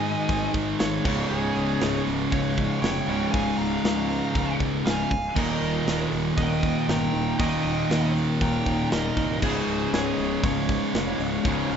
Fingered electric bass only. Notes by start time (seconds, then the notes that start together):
Already playing: G#2
0.29 G#1
0.54 G#1
0.81 G#1
1.05 C#1
1.31 C#1
1.56 C#1
1.82 C#1
2.07 C#1
2.32 C#1
2.82 F1
3.08 C#1
3.34 C#1
3.58 C#1
3.84 C#2
4.35 C#1
4.60 C#1
4.86 C#1
5.11 C#1
5.36 D#1
5.61 D#1
5.86 D#1
6.12 D#1
6.37 D#1
6.89 G1
7.14 D#1
7.39 D#1
7.65 D#1
7.90 D#2
8.41 D#1
8.66 D#1
8.92 D#1
9.17 C1
9.42 C#1
9.67 C#1
9.93 C#1
10.18 C#1
10.43 C#1
10.94 F1
11.19 C#1
11.45 C#1
11.70 C#1